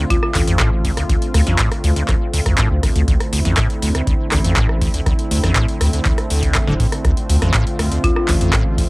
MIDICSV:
0, 0, Header, 1, 6, 480
1, 0, Start_track
1, 0, Key_signature, -1, "minor"
1, 0, Tempo, 495868
1, 1061, Time_signature, 4, 2, 24, 8
1, 8608, End_track
2, 0, Start_track
2, 0, Title_t, "Marimba"
2, 0, Program_c, 0, 12
2, 101, Note_on_c, 0, 65, 88
2, 178, Note_off_c, 0, 65, 0
2, 221, Note_on_c, 0, 65, 79
2, 298, Note_off_c, 0, 65, 0
2, 7782, Note_on_c, 0, 65, 90
2, 7858, Note_off_c, 0, 65, 0
2, 7902, Note_on_c, 0, 65, 77
2, 7978, Note_off_c, 0, 65, 0
2, 8608, End_track
3, 0, Start_track
3, 0, Title_t, "Analog synth pad"
3, 0, Program_c, 1, 89
3, 0, Note_on_c, 1, 50, 84
3, 0, Note_on_c, 1, 57, 76
3, 0, Note_on_c, 1, 60, 76
3, 0, Note_on_c, 1, 65, 91
3, 2966, Note_off_c, 1, 65, 0
3, 2981, Note_on_c, 1, 64, 91
3, 6806, Note_off_c, 1, 64, 0
3, 6821, Note_on_c, 1, 65, 92
3, 8608, Note_off_c, 1, 50, 0
3, 8608, Note_off_c, 1, 57, 0
3, 8608, Note_off_c, 1, 60, 0
3, 8608, Note_off_c, 1, 65, 0
3, 8608, End_track
4, 0, Start_track
4, 0, Title_t, "Acid bass"
4, 0, Program_c, 2, 38
4, 101, Note_on_c, 2, 38, 83
4, 167, Note_off_c, 2, 38, 0
4, 341, Note_on_c, 2, 38, 102
4, 407, Note_off_c, 2, 38, 0
4, 461, Note_on_c, 2, 41, 81
4, 560, Note_off_c, 2, 41, 0
4, 581, Note_on_c, 2, 45, 99
4, 680, Note_off_c, 2, 45, 0
4, 821, Note_on_c, 2, 38, 81
4, 887, Note_off_c, 2, 38, 0
4, 941, Note_on_c, 2, 38, 80
4, 1007, Note_off_c, 2, 38, 0
4, 1061, Note_on_c, 2, 38, 83
4, 1127, Note_off_c, 2, 38, 0
4, 1301, Note_on_c, 2, 38, 104
4, 1367, Note_off_c, 2, 38, 0
4, 1422, Note_on_c, 2, 41, 77
4, 1520, Note_off_c, 2, 41, 0
4, 1541, Note_on_c, 2, 45, 101
4, 1640, Note_off_c, 2, 45, 0
4, 1781, Note_on_c, 2, 38, 77
4, 1847, Note_off_c, 2, 38, 0
4, 1901, Note_on_c, 2, 38, 78
4, 1967, Note_off_c, 2, 38, 0
4, 2021, Note_on_c, 2, 38, 83
4, 2087, Note_off_c, 2, 38, 0
4, 2261, Note_on_c, 2, 38, 101
4, 2327, Note_off_c, 2, 38, 0
4, 2382, Note_on_c, 2, 41, 80
4, 2480, Note_off_c, 2, 41, 0
4, 2501, Note_on_c, 2, 45, 99
4, 2601, Note_off_c, 2, 45, 0
4, 2741, Note_on_c, 2, 38, 77
4, 2807, Note_off_c, 2, 38, 0
4, 2861, Note_on_c, 2, 38, 77
4, 2927, Note_off_c, 2, 38, 0
4, 2981, Note_on_c, 2, 38, 84
4, 3047, Note_off_c, 2, 38, 0
4, 3221, Note_on_c, 2, 38, 106
4, 3287, Note_off_c, 2, 38, 0
4, 3342, Note_on_c, 2, 41, 79
4, 3440, Note_off_c, 2, 41, 0
4, 3461, Note_on_c, 2, 45, 102
4, 3560, Note_off_c, 2, 45, 0
4, 3701, Note_on_c, 2, 38, 77
4, 3767, Note_off_c, 2, 38, 0
4, 3821, Note_on_c, 2, 38, 79
4, 3887, Note_off_c, 2, 38, 0
4, 3941, Note_on_c, 2, 38, 84
4, 4007, Note_off_c, 2, 38, 0
4, 4181, Note_on_c, 2, 38, 103
4, 4247, Note_off_c, 2, 38, 0
4, 4301, Note_on_c, 2, 41, 78
4, 4400, Note_off_c, 2, 41, 0
4, 4421, Note_on_c, 2, 45, 102
4, 4520, Note_off_c, 2, 45, 0
4, 4661, Note_on_c, 2, 38, 80
4, 4727, Note_off_c, 2, 38, 0
4, 4781, Note_on_c, 2, 38, 80
4, 4847, Note_off_c, 2, 38, 0
4, 4900, Note_on_c, 2, 38, 87
4, 4967, Note_off_c, 2, 38, 0
4, 5140, Note_on_c, 2, 38, 106
4, 5207, Note_off_c, 2, 38, 0
4, 5261, Note_on_c, 2, 41, 79
4, 5360, Note_off_c, 2, 41, 0
4, 5381, Note_on_c, 2, 45, 102
4, 5480, Note_off_c, 2, 45, 0
4, 5621, Note_on_c, 2, 38, 76
4, 5687, Note_off_c, 2, 38, 0
4, 5741, Note_on_c, 2, 38, 76
4, 5807, Note_off_c, 2, 38, 0
4, 5861, Note_on_c, 2, 38, 81
4, 5927, Note_off_c, 2, 38, 0
4, 6101, Note_on_c, 2, 38, 99
4, 6341, Note_on_c, 2, 45, 82
4, 6356, Note_off_c, 2, 38, 0
4, 6381, Note_off_c, 2, 45, 0
4, 6461, Note_on_c, 2, 50, 77
4, 6527, Note_off_c, 2, 50, 0
4, 6581, Note_on_c, 2, 45, 105
4, 6647, Note_off_c, 2, 45, 0
4, 6821, Note_on_c, 2, 38, 86
4, 6887, Note_off_c, 2, 38, 0
4, 7061, Note_on_c, 2, 38, 107
4, 7127, Note_off_c, 2, 38, 0
4, 7181, Note_on_c, 2, 41, 80
4, 7280, Note_off_c, 2, 41, 0
4, 7301, Note_on_c, 2, 45, 102
4, 7400, Note_off_c, 2, 45, 0
4, 7541, Note_on_c, 2, 38, 75
4, 7607, Note_off_c, 2, 38, 0
4, 7661, Note_on_c, 2, 38, 78
4, 7727, Note_off_c, 2, 38, 0
4, 7781, Note_on_c, 2, 38, 83
4, 7847, Note_off_c, 2, 38, 0
4, 8021, Note_on_c, 2, 38, 101
4, 8087, Note_off_c, 2, 38, 0
4, 8141, Note_on_c, 2, 41, 78
4, 8240, Note_off_c, 2, 41, 0
4, 8261, Note_on_c, 2, 45, 102
4, 8360, Note_off_c, 2, 45, 0
4, 8501, Note_on_c, 2, 38, 79
4, 8567, Note_off_c, 2, 38, 0
4, 8608, End_track
5, 0, Start_track
5, 0, Title_t, "Sub bass"
5, 0, Program_c, 3, 38
5, 340, Note_on_c, 3, 33, 92
5, 896, Note_off_c, 3, 33, 0
5, 1301, Note_on_c, 3, 38, 93
5, 1393, Note_off_c, 3, 38, 0
5, 1421, Note_on_c, 3, 33, 89
5, 1513, Note_off_c, 3, 33, 0
5, 1781, Note_on_c, 3, 38, 82
5, 1873, Note_off_c, 3, 38, 0
5, 2381, Note_on_c, 3, 38, 98
5, 2473, Note_off_c, 3, 38, 0
5, 2621, Note_on_c, 3, 38, 82
5, 2713, Note_off_c, 3, 38, 0
5, 2861, Note_on_c, 3, 38, 99
5, 2953, Note_off_c, 3, 38, 0
5, 2981, Note_on_c, 3, 38, 100
5, 3073, Note_off_c, 3, 38, 0
5, 3221, Note_on_c, 3, 38, 96
5, 3313, Note_off_c, 3, 38, 0
5, 3341, Note_on_c, 3, 33, 86
5, 3433, Note_off_c, 3, 33, 0
5, 3701, Note_on_c, 3, 38, 85
5, 3793, Note_off_c, 3, 38, 0
5, 4181, Note_on_c, 3, 33, 96
5, 4737, Note_off_c, 3, 33, 0
5, 5141, Note_on_c, 3, 38, 94
5, 5233, Note_off_c, 3, 38, 0
5, 5262, Note_on_c, 3, 33, 86
5, 5353, Note_off_c, 3, 33, 0
5, 5621, Note_on_c, 3, 38, 85
5, 5714, Note_off_c, 3, 38, 0
5, 6462, Note_on_c, 3, 26, 92
5, 6554, Note_off_c, 3, 26, 0
5, 6821, Note_on_c, 3, 38, 100
5, 6914, Note_off_c, 3, 38, 0
5, 7062, Note_on_c, 3, 38, 95
5, 7154, Note_off_c, 3, 38, 0
5, 7182, Note_on_c, 3, 33, 84
5, 7273, Note_off_c, 3, 33, 0
5, 7541, Note_on_c, 3, 38, 84
5, 7634, Note_off_c, 3, 38, 0
5, 8021, Note_on_c, 3, 33, 92
5, 8577, Note_off_c, 3, 33, 0
5, 8608, End_track
6, 0, Start_track
6, 0, Title_t, "Drums"
6, 101, Note_on_c, 9, 36, 120
6, 101, Note_on_c, 9, 42, 69
6, 198, Note_off_c, 9, 36, 0
6, 198, Note_off_c, 9, 42, 0
6, 222, Note_on_c, 9, 37, 57
6, 318, Note_off_c, 9, 37, 0
6, 338, Note_on_c, 9, 39, 63
6, 341, Note_on_c, 9, 46, 104
6, 435, Note_off_c, 9, 39, 0
6, 438, Note_off_c, 9, 46, 0
6, 462, Note_on_c, 9, 42, 55
6, 558, Note_off_c, 9, 42, 0
6, 578, Note_on_c, 9, 39, 125
6, 581, Note_on_c, 9, 36, 125
6, 581, Note_on_c, 9, 37, 58
6, 581, Note_on_c, 9, 42, 68
6, 675, Note_off_c, 9, 39, 0
6, 678, Note_off_c, 9, 36, 0
6, 678, Note_off_c, 9, 37, 0
6, 678, Note_off_c, 9, 42, 0
6, 821, Note_on_c, 9, 36, 84
6, 821, Note_on_c, 9, 46, 105
6, 918, Note_off_c, 9, 36, 0
6, 918, Note_off_c, 9, 46, 0
6, 942, Note_on_c, 9, 37, 54
6, 942, Note_on_c, 9, 42, 53
6, 1039, Note_off_c, 9, 37, 0
6, 1039, Note_off_c, 9, 42, 0
6, 1061, Note_on_c, 9, 36, 117
6, 1061, Note_on_c, 9, 42, 67
6, 1158, Note_off_c, 9, 36, 0
6, 1158, Note_off_c, 9, 42, 0
6, 1182, Note_on_c, 9, 42, 38
6, 1278, Note_off_c, 9, 42, 0
6, 1301, Note_on_c, 9, 37, 60
6, 1301, Note_on_c, 9, 46, 112
6, 1398, Note_off_c, 9, 37, 0
6, 1398, Note_off_c, 9, 46, 0
6, 1421, Note_on_c, 9, 38, 36
6, 1421, Note_on_c, 9, 42, 52
6, 1518, Note_off_c, 9, 38, 0
6, 1518, Note_off_c, 9, 42, 0
6, 1538, Note_on_c, 9, 39, 127
6, 1541, Note_on_c, 9, 36, 124
6, 1541, Note_on_c, 9, 42, 69
6, 1634, Note_off_c, 9, 39, 0
6, 1637, Note_off_c, 9, 42, 0
6, 1638, Note_off_c, 9, 36, 0
6, 1661, Note_on_c, 9, 37, 57
6, 1661, Note_on_c, 9, 42, 38
6, 1758, Note_off_c, 9, 37, 0
6, 1758, Note_off_c, 9, 42, 0
6, 1781, Note_on_c, 9, 46, 111
6, 1878, Note_off_c, 9, 46, 0
6, 1901, Note_on_c, 9, 42, 55
6, 1998, Note_off_c, 9, 42, 0
6, 2018, Note_on_c, 9, 39, 64
6, 2021, Note_on_c, 9, 36, 127
6, 2021, Note_on_c, 9, 37, 56
6, 2021, Note_on_c, 9, 42, 66
6, 2114, Note_off_c, 9, 39, 0
6, 2117, Note_off_c, 9, 37, 0
6, 2117, Note_off_c, 9, 42, 0
6, 2118, Note_off_c, 9, 36, 0
6, 2260, Note_on_c, 9, 46, 108
6, 2357, Note_off_c, 9, 46, 0
6, 2381, Note_on_c, 9, 36, 65
6, 2381, Note_on_c, 9, 37, 61
6, 2381, Note_on_c, 9, 42, 55
6, 2478, Note_off_c, 9, 36, 0
6, 2478, Note_off_c, 9, 37, 0
6, 2478, Note_off_c, 9, 42, 0
6, 2498, Note_on_c, 9, 39, 124
6, 2501, Note_on_c, 9, 36, 125
6, 2501, Note_on_c, 9, 42, 67
6, 2595, Note_off_c, 9, 39, 0
6, 2598, Note_off_c, 9, 36, 0
6, 2598, Note_off_c, 9, 42, 0
6, 2741, Note_on_c, 9, 36, 87
6, 2741, Note_on_c, 9, 37, 57
6, 2741, Note_on_c, 9, 46, 108
6, 2838, Note_off_c, 9, 36, 0
6, 2838, Note_off_c, 9, 37, 0
6, 2838, Note_off_c, 9, 46, 0
6, 2861, Note_on_c, 9, 42, 52
6, 2958, Note_off_c, 9, 42, 0
6, 2981, Note_on_c, 9, 36, 127
6, 2981, Note_on_c, 9, 42, 61
6, 3077, Note_off_c, 9, 42, 0
6, 3078, Note_off_c, 9, 36, 0
6, 3101, Note_on_c, 9, 37, 60
6, 3101, Note_on_c, 9, 42, 37
6, 3198, Note_off_c, 9, 37, 0
6, 3198, Note_off_c, 9, 42, 0
6, 3220, Note_on_c, 9, 46, 116
6, 3317, Note_off_c, 9, 46, 0
6, 3341, Note_on_c, 9, 38, 37
6, 3341, Note_on_c, 9, 42, 52
6, 3438, Note_off_c, 9, 38, 0
6, 3438, Note_off_c, 9, 42, 0
6, 3458, Note_on_c, 9, 39, 120
6, 3461, Note_on_c, 9, 36, 123
6, 3461, Note_on_c, 9, 37, 63
6, 3461, Note_on_c, 9, 42, 66
6, 3554, Note_off_c, 9, 39, 0
6, 3558, Note_off_c, 9, 36, 0
6, 3558, Note_off_c, 9, 37, 0
6, 3558, Note_off_c, 9, 42, 0
6, 3581, Note_on_c, 9, 42, 35
6, 3678, Note_off_c, 9, 42, 0
6, 3701, Note_on_c, 9, 46, 113
6, 3798, Note_off_c, 9, 46, 0
6, 3822, Note_on_c, 9, 37, 60
6, 3822, Note_on_c, 9, 42, 51
6, 3918, Note_off_c, 9, 37, 0
6, 3918, Note_off_c, 9, 42, 0
6, 3941, Note_on_c, 9, 36, 126
6, 3941, Note_on_c, 9, 42, 63
6, 4038, Note_off_c, 9, 36, 0
6, 4038, Note_off_c, 9, 42, 0
6, 4178, Note_on_c, 9, 39, 61
6, 4181, Note_on_c, 9, 37, 64
6, 4181, Note_on_c, 9, 46, 111
6, 4275, Note_off_c, 9, 39, 0
6, 4278, Note_off_c, 9, 37, 0
6, 4278, Note_off_c, 9, 46, 0
6, 4301, Note_on_c, 9, 42, 53
6, 4398, Note_off_c, 9, 42, 0
6, 4418, Note_on_c, 9, 39, 120
6, 4421, Note_on_c, 9, 36, 125
6, 4421, Note_on_c, 9, 42, 65
6, 4515, Note_off_c, 9, 39, 0
6, 4518, Note_off_c, 9, 36, 0
6, 4518, Note_off_c, 9, 42, 0
6, 4541, Note_on_c, 9, 37, 62
6, 4638, Note_off_c, 9, 37, 0
6, 4660, Note_on_c, 9, 46, 108
6, 4661, Note_on_c, 9, 36, 89
6, 4757, Note_off_c, 9, 46, 0
6, 4758, Note_off_c, 9, 36, 0
6, 4781, Note_on_c, 9, 42, 51
6, 4878, Note_off_c, 9, 42, 0
6, 4901, Note_on_c, 9, 36, 123
6, 4901, Note_on_c, 9, 37, 60
6, 4901, Note_on_c, 9, 42, 59
6, 4998, Note_off_c, 9, 36, 0
6, 4998, Note_off_c, 9, 37, 0
6, 4998, Note_off_c, 9, 42, 0
6, 5022, Note_on_c, 9, 42, 36
6, 5118, Note_off_c, 9, 42, 0
6, 5141, Note_on_c, 9, 46, 112
6, 5238, Note_off_c, 9, 46, 0
6, 5261, Note_on_c, 9, 37, 63
6, 5261, Note_on_c, 9, 38, 37
6, 5261, Note_on_c, 9, 42, 49
6, 5358, Note_off_c, 9, 37, 0
6, 5358, Note_off_c, 9, 38, 0
6, 5358, Note_off_c, 9, 42, 0
6, 5378, Note_on_c, 9, 39, 119
6, 5381, Note_on_c, 9, 36, 124
6, 5381, Note_on_c, 9, 42, 64
6, 5475, Note_off_c, 9, 39, 0
6, 5478, Note_off_c, 9, 36, 0
6, 5478, Note_off_c, 9, 42, 0
6, 5501, Note_on_c, 9, 42, 35
6, 5598, Note_off_c, 9, 42, 0
6, 5621, Note_on_c, 9, 37, 64
6, 5621, Note_on_c, 9, 46, 114
6, 5718, Note_off_c, 9, 37, 0
6, 5718, Note_off_c, 9, 46, 0
6, 5742, Note_on_c, 9, 42, 50
6, 5839, Note_off_c, 9, 42, 0
6, 5858, Note_on_c, 9, 39, 59
6, 5861, Note_on_c, 9, 36, 124
6, 5861, Note_on_c, 9, 42, 59
6, 5955, Note_off_c, 9, 39, 0
6, 5958, Note_off_c, 9, 36, 0
6, 5958, Note_off_c, 9, 42, 0
6, 5982, Note_on_c, 9, 37, 60
6, 5982, Note_on_c, 9, 42, 35
6, 6078, Note_off_c, 9, 37, 0
6, 6078, Note_off_c, 9, 42, 0
6, 6101, Note_on_c, 9, 46, 105
6, 6198, Note_off_c, 9, 46, 0
6, 6222, Note_on_c, 9, 36, 66
6, 6222, Note_on_c, 9, 42, 51
6, 6318, Note_off_c, 9, 36, 0
6, 6319, Note_off_c, 9, 42, 0
6, 6338, Note_on_c, 9, 39, 116
6, 6341, Note_on_c, 9, 36, 122
6, 6341, Note_on_c, 9, 37, 62
6, 6341, Note_on_c, 9, 42, 61
6, 6435, Note_off_c, 9, 39, 0
6, 6438, Note_off_c, 9, 36, 0
6, 6438, Note_off_c, 9, 37, 0
6, 6438, Note_off_c, 9, 42, 0
6, 6462, Note_on_c, 9, 38, 62
6, 6558, Note_off_c, 9, 38, 0
6, 6581, Note_on_c, 9, 36, 86
6, 6582, Note_on_c, 9, 46, 107
6, 6678, Note_off_c, 9, 36, 0
6, 6678, Note_off_c, 9, 46, 0
6, 6702, Note_on_c, 9, 37, 58
6, 6702, Note_on_c, 9, 42, 49
6, 6799, Note_off_c, 9, 37, 0
6, 6799, Note_off_c, 9, 42, 0
6, 6821, Note_on_c, 9, 36, 117
6, 6821, Note_on_c, 9, 37, 60
6, 6821, Note_on_c, 9, 42, 64
6, 6918, Note_off_c, 9, 36, 0
6, 6918, Note_off_c, 9, 37, 0
6, 6918, Note_off_c, 9, 42, 0
6, 6942, Note_on_c, 9, 42, 35
6, 7039, Note_off_c, 9, 42, 0
6, 7062, Note_on_c, 9, 46, 107
6, 7158, Note_off_c, 9, 46, 0
6, 7182, Note_on_c, 9, 37, 60
6, 7182, Note_on_c, 9, 38, 39
6, 7182, Note_on_c, 9, 42, 49
6, 7279, Note_off_c, 9, 37, 0
6, 7279, Note_off_c, 9, 38, 0
6, 7279, Note_off_c, 9, 42, 0
6, 7299, Note_on_c, 9, 39, 116
6, 7301, Note_on_c, 9, 36, 119
6, 7302, Note_on_c, 9, 42, 64
6, 7396, Note_off_c, 9, 39, 0
6, 7398, Note_off_c, 9, 36, 0
6, 7399, Note_off_c, 9, 42, 0
6, 7422, Note_on_c, 9, 42, 35
6, 7519, Note_off_c, 9, 42, 0
6, 7542, Note_on_c, 9, 37, 63
6, 7542, Note_on_c, 9, 46, 109
6, 7639, Note_off_c, 9, 37, 0
6, 7639, Note_off_c, 9, 46, 0
6, 7662, Note_on_c, 9, 42, 52
6, 7759, Note_off_c, 9, 42, 0
6, 7781, Note_on_c, 9, 36, 120
6, 7782, Note_on_c, 9, 42, 61
6, 7878, Note_off_c, 9, 36, 0
6, 7879, Note_off_c, 9, 42, 0
6, 7902, Note_on_c, 9, 37, 62
6, 7999, Note_off_c, 9, 37, 0
6, 8018, Note_on_c, 9, 39, 61
6, 8021, Note_on_c, 9, 46, 105
6, 8115, Note_off_c, 9, 39, 0
6, 8118, Note_off_c, 9, 46, 0
6, 8142, Note_on_c, 9, 42, 52
6, 8239, Note_off_c, 9, 42, 0
6, 8259, Note_on_c, 9, 39, 111
6, 8261, Note_on_c, 9, 36, 119
6, 8262, Note_on_c, 9, 37, 64
6, 8262, Note_on_c, 9, 42, 63
6, 8355, Note_off_c, 9, 39, 0
6, 8358, Note_off_c, 9, 36, 0
6, 8359, Note_off_c, 9, 37, 0
6, 8359, Note_off_c, 9, 42, 0
6, 8501, Note_on_c, 9, 36, 85
6, 8501, Note_on_c, 9, 46, 102
6, 8598, Note_off_c, 9, 36, 0
6, 8598, Note_off_c, 9, 46, 0
6, 8608, End_track
0, 0, End_of_file